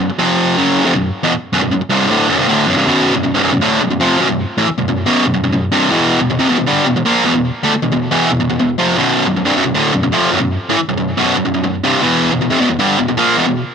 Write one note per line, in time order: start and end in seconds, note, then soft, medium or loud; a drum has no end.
0.10 muted distorted electric guitar stroke medium
0.19 0.56 F2 medium
0.19 0.56 C3 loud
0.19 0.57 F3 loud
0.57 0.85 F#2 medium
0.57 0.85 C#3 loud
0.57 0.85 F#3 loud
0.85 0.94 F2 loud
0.85 0.94 C3 loud
0.95 1.10 B1 medium
0.95 1.10 F#2 medium
1.23 1.32 E2 medium
1.23 1.32 B2 loud
1.53 1.61 B1 medium
1.53 1.62 F#2 loud
1.62 1.70 B1 medium
1.62 1.71 F#2 medium
1.72 1.81 B1 medium
1.72 1.81 F#2 medium
1.82 muted distorted electric guitar stroke medium
1.90 2.09 C2 medium
1.90 2.09 G2 medium
1.90 2.09 C3 loud
2.10 2.28 D2 medium
2.10 2.28 A2 medium
2.10 2.29 D3 loud
2.29 2.38 B1 loud
2.29 2.38 F#2 loud
2.38 2.47 C2 medium
2.38 2.47 G2 medium
2.48 2.66 D2 medium
2.48 2.66 A2 medium
2.48 2.66 D3 loud
2.68 2.76 B1 medium
2.68 2.76 F#2 medium
2.77 2.85 C2 medium
2.77 2.85 G2 loud
2.86 3.13 B1 loud
2.86 3.14 F#2 loud
2.86 3.14 B2 loud
3.15 3.22 B1 medium
3.15 3.23 F#2 medium
3.23 3.33 B1 medium
3.23 3.34 F#2 medium
3.35 3.42 C2 medium
3.35 3.43 G2 medium
3.43 3.51 B1 medium
3.43 3.52 F#2 medium
3.53 3.61 B1 medium
3.53 3.62 F#2 medium
3.61 3.80 D2 medium
3.61 3.81 A2 loud
3.61 3.81 D3 loud
3.81 3.89 B1 medium
3.81 3.90 F#2 medium
3.90 4.00 B1 medium
3.90 4.00 F#2 medium
4.00 4.19 F2 medium
4.00 4.19 C3 medium
4.00 4.19 F3 loud
4.19 4.28 B1 medium
4.19 4.29 F#2 medium
4.30 4.45 B1 medium
4.30 4.45 F#2 medium
4.58 4.67 A2 medium
4.58 4.67 E3 loud
4.68 muted distorted electric guitar stroke medium
4.78 4.87 B1 medium
4.78 4.87 F#2 medium
4.88 5.02 B1 medium
4.88 5.03 F#2 medium
5.06 5.24 B1 medium
5.06 5.24 F#2 loud
5.06 5.25 B2 loud
5.25 5.33 B1 medium
5.25 5.33 F#2 medium
5.34 5.42 B1 medium
5.34 5.43 F#2 medium
5.44 5.51 B1 medium
5.44 5.52 F#2 medium
5.52 5.68 B1 medium
5.52 5.69 F#2 medium
5.72 5.91 C2 medium
5.72 5.91 G2 medium
5.72 5.91 C3 loud
5.91 6.19 E2 medium
5.91 6.20 B2 loud
5.91 6.20 E3 loud
6.20 6.29 E2 medium
6.20 6.29 B2 medium
6.30 6.39 E2 medium
6.30 6.39 B2 medium
6.39 6.48 F2 loud
6.39 6.48 C3 medium
6.48 6.57 E2 medium
6.48 6.58 B2 loud
6.59 6.67 E2 medium
6.59 6.67 B2 medium
6.67 6.86 G2 loud
6.67 6.86 D3 medium
6.67 6.87 G3 loud
6.86 6.95 E2 medium
6.86 6.96 B2 medium
6.97 7.06 E2 medium
6.97 7.05 B2 medium
7.05 7.24 A#2 medium
7.05 7.25 F3 loud
7.05 7.25 A#3 loud
7.25 7.34 E2 medium
7.25 7.34 B2 loud
7.35 7.50 E2 medium
7.35 7.50 B2 medium
7.63 7.72 D3 medium
7.63 7.73 A3 medium
7.73 muted distorted electric guitar stroke medium
7.82 7.91 E2 medium
7.82 7.91 B2 medium
7.92 8.07 E2 medium
7.92 8.08 B2 medium
8.11 8.29 E2 medium
8.11 8.29 B2 loud
8.11 8.30 E3 loud
8.30 8.39 E2 medium
8.30 8.39 B2 medium
8.40 8.48 E2 medium
8.40 8.48 B2 medium
8.49 8.58 E2 medium
8.49 8.58 B2 medium
8.59 8.75 E2 medium
8.59 8.75 B2 medium
8.78 8.97 F2 medium
8.78 8.97 C3 loud
8.78 8.97 F3 loud
8.97 9.25 B1 loud
8.97 9.26 F#2 loud
8.97 9.26 B2 loud
9.26 9.36 B1 medium
9.26 9.36 F#2 medium
9.37 9.45 B1 medium
9.37 9.46 F#2 medium
9.45 9.54 C2 medium
9.45 9.55 G2 loud
9.56 9.63 B1 medium
9.56 9.64 F#2 medium
9.65 9.74 B1 medium
9.65 9.74 F#2 medium
9.75 9.93 D2 medium
9.75 9.93 A2 loud
9.75 9.93 D3 loud
9.93 10.02 B1 medium
9.93 10.02 F#2 medium
10.03 10.12 B1 medium
10.03 10.12 F#2 medium
10.12 10.31 F2 medium
10.12 10.31 C3 medium
10.12 10.31 F3 medium
10.31 10.39 B1 medium
10.31 10.39 F#2 loud
10.40 10.56 B1 medium
10.40 10.56 F#2 medium
10.69 10.78 A2 medium
10.69 10.79 E3 medium
10.78 muted distorted electric guitar stroke medium
10.89 10.96 B1 medium
10.89 10.97 F#2 medium
10.98 11.13 B1 medium
10.98 11.13 F#2 medium
11.17 11.35 B1 loud
11.17 11.36 F#2 medium
11.17 11.36 B2 loud
11.36 11.44 B1 medium
11.36 11.44 F#2 medium
11.45 11.53 B1 medium
11.45 11.53 F#2 medium
11.54 11.63 B1 medium
11.54 11.63 F#2 medium
11.64 11.80 B1 medium
11.64 11.80 F#2 medium
11.84 12.02 C2 medium
11.84 12.02 G2 loud
11.84 12.03 C3 medium
12.03 12.31 E2 loud
12.03 12.31 B2 loud
12.03 12.32 E3 loud
12.32 12.40 E2 medium
12.32 12.40 B2 medium
12.41 12.50 E2 medium
12.41 12.50 B2 medium
12.50 12.60 F2 medium
12.50 12.60 C3 loud
12.60 12.68 E2 medium
12.60 12.69 B2 loud
12.70 12.78 E2 medium
12.70 12.79 B2 medium
12.79 12.98 G2 medium
12.79 12.98 D3 medium
12.79 12.98 G3 loud
12.98 13.07 E2 medium
12.98 13.07 B2 medium
13.08 13.18 E2 medium
13.08 13.17 B2 medium
13.17 13.36 A#2 medium
13.17 13.36 F3 medium
13.17 13.37 A#3 medium
13.37 13.45 E2 medium
13.37 13.45 B2 loud
13.47 13.62 E2 medium
13.47 13.62 B2 medium